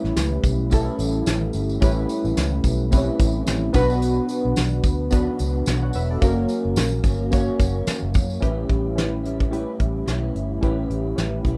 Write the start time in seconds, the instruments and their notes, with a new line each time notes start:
Already playing: clean electric guitar A2 G3 C#4 E4, synth keys C#4 E4 G4 B4
0.04 fingered electric bass A1, snare
0.16 fingered electric bass C#2, snare, closed hi-hat, tambourine
0.44 fingered electric bass B1, kick, closed hi-hat, tambourine
0.70 clean electric guitar A2 G3 C#4, synth keys C#4 E4 G4 A4, kick, closed hi-hat, tambourine
0.75 clean electric guitar E4
0.99 fingered electric bass A1, closed hi-hat, tambourine
1.26 fingered electric bass A1, snare, closed hi-hat, tambourine
1.53 fingered electric bass G1, closed hi-hat, tambourine
1.69 tambourine
1.80 fingered electric bass A1, clean electric guitar A2 G3 C#4, synth keys C#4 E4 G4 B4, kick, closed hi-hat, tambourine
1.85 clean electric guitar E4
2.09 closed hi-hat, tambourine
2.24 fingered electric bass A1, tambourine
2.37 fingered electric bass C#2, snare, closed hi-hat, tambourine
2.64 fingered electric bass B1, kick, closed hi-hat, tambourine
2.91 clean electric guitar A2 G3 C#4 E4, synth keys C4 E4 G4 B4, kick, closed hi-hat, tambourine
2.97 synth keys C#4
3.19 fingered electric bass A1, kick, closed hi-hat, tambourine
3.47 fingered electric bass A1, snare, closed hi-hat, tambourine
3.73 fingered electric bass B1, clean electric guitar F#3 B3 D4, synth keys B3 D4 F#4 B4, kick, closed hi-hat, tambourine
3.78 clean electric guitar B2
3.90 tambourine
4.02 closed hi-hat, tambourine
4.29 closed hi-hat, tambourine
4.45 fingered electric bass B1
4.56 fingered electric bass B1, snare, closed hi-hat, tambourine
4.83 fingered electric bass D2, kick, closed hi-hat, tambourine
5.11 clean electric guitar B2 F#3 B3 D4, synth keys B3 D4 F#4 B4, kick, closed hi-hat, tambourine
5.39 fingered electric bass C#2, closed hi-hat, tambourine
5.66 fingered electric bass B1, clean electric guitar B2 F#3 B3 D4, snare, closed hi-hat, tambourine
5.82 synth keys C#5 F#5
5.93 fingered electric bass E1, synth keys B4 E5, open hi-hat, tambourine
6.10 synth keys A4 D5
6.21 fingered electric bass F#1, clean electric guitar F#2 F#3 A#3 C#4, synth keys A#3 C#4 F#4 A#4, kick, closed hi-hat, tambourine
6.48 closed hi-hat, tambourine
6.65 fingered electric bass F#1
6.76 fingered electric bass A#1, snare, closed hi-hat, tambourine
7.04 fingered electric bass G1, clean electric guitar F#3 A#3 C#4, kick, closed hi-hat, tambourine
7.31 clean electric guitar F#2 F#3 A#3, synth keys A#3 C#4 F#4 C#5, kick, closed hi-hat, tambourine
7.36 clean electric guitar C#4
7.60 fingered electric bass F#1, kick, closed hi-hat, tambourine
7.87 muted fingered electric bass stroke, snare, closed hi-hat, tambourine
8.02 fingered electric bass F#1
8.14 fingered electric bass F#2, kick, closed hi-hat, tambourine
8.30 tambourine
8.40 fingered electric bass A1, clean electric guitar A2 G3 C#4 E4, synth keys C#4 E4 G4 B4, kick, closed hi-hat
8.70 fingered electric bass A1, kick, closed hi-hat
8.95 synth keys C#4 E4 G4 B4, snare, closed hi-hat
9.23 clean electric guitar G3 C#4 E4, closed hi-hat
9.40 kick, closed hi-hat
9.51 clean electric guitar A2 G3 C#4 E4, synth keys C#4 E4 G4 B4, closed hi-hat
9.80 fingered electric bass A1, kick, closed hi-hat
10.06 fingered electric bass B1, clean electric guitar A2 G3 C#4 E4, snare, closed hi-hat
10.35 fingered electric bass G1, closed hi-hat
10.61 fingered electric bass A1, clean electric guitar A2 G3 C#4 E4, synth keys C#4 E4 G4 B4, kick, closed hi-hat
10.90 fingered electric bass A1, closed hi-hat
11.16 fingered electric bass A1, synth keys C#4 E4 G4 B4, snare, closed hi-hat
11.44 fingered electric bass B1, clean electric guitar G3 C#4 E4, kick, closed hi-hat